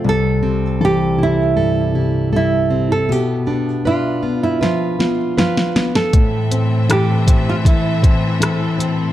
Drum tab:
HH |----------------|----------------|x-x-x-x-x-x-x-x-|
SD |----------------|--------o-o-oooo|----r-------r---|
BD |----------------|----------------|o-----o-o-o-----|